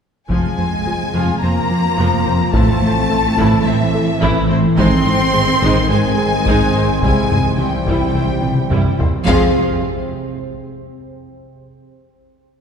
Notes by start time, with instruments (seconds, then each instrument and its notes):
0.29 double bass section F1, analog synth bass F2, viola section F3 F4, french horn section F3 C4, ambient pad F3 C4 F4 C5, cello section G#3, violin section G#5, taiko
0.58 double bass section F1, analog synth bass F2, viola section C4 C5
0.86 double bass section F1, analog synth bass F3, viola section G#3 G#4
1.14 double bass section F1, analog synth bass F2, viola section F3 F4
1.41 double bass section F1, analog synth bass F2, cello section A#3, viola section C4 C5, violin section A#5
1.71 analog synth bass F3
1.98 double bass section F1, analog synth bass F2, viola section F3 F4
2.26 double bass section F1, analog synth bass F2, viola section C4 C5
2.53 double bass section A1, analog synth bass A2, ambient pad E3 A4, french horn section E3, viola section E3 E4, cello section A3, violin section A5, taiko
2.82 double bass section A1, analog synth bass A2, viola section C4 C5
3.10 double bass section A1, analog synth bass A3, viola section A3 A4
3.37 double bass section A1, analog synth bass A2, viola section E3 E4, taiko
3.64 double bass section A1, analog synth bass A2, cello section E3, viola section C4 C5, violin section E5
3.95 analog synth bass A3
4.21 double bass section A1, analog synth bass A2, viola section E3 E4, taiko
4.50 double bass section A1, analog synth bass A2, viola section C4 C5
4.77 double bass section G#1, analog synth bass G#2, ambient pad D#3 C4 G#4 C5, french horn section D#3 C4, viola section G#3 D#4, cello section C4, violin section C6, taiko
5.06 double bass section G#1, analog synth bass G#2, viola section D#4 C5
5.33 double bass section G#1, analog synth bass G#3, viola section C4 G#4
5.62 double bass section G#1, analog synth bass G#2, viola section G#3 D#4, taiko
5.89 double bass section G#1, analog synth bass G#2, cello section G#3, viola section D#4 C5, violin section G#5
6.17 analog synth bass G#3
6.45 double bass section G#1, analog synth bass G#2, viola section G#3 D#4, taiko
6.73 double bass section G#1, analog synth bass G#2, viola section D#4 C5
7.02 analog synth bass C2, double bass section C2, ambient pad C3 E4, french horn section E3, viola section G3 E4, cello section G#3, violin section G#5, taiko
7.30 analog synth bass C2, double bass section C2, viola section E4 C5, taiko low-mid
7.58 double bass section C2, analog synth bass C3, cello section G3, viola section C4 G4, violin section G5
7.85 analog synth bass C2, double bass section C2, viola section G3 E4, taiko
8.14 analog synth bass C2, double bass section C2, viola section E4 C5
8.42 analog synth bass C3, taiko mid
8.70 analog synth bass C2, double bass section C2, viola section G3 E4, taiko low-mid
8.99 double bass section C2, analog synth bass C2, viola section E4 C5, taiko low
9.26 double bass section F2, cello section F3, french horn section G#3 C4, viola section C4 G#4, violin section F4 F5, taiko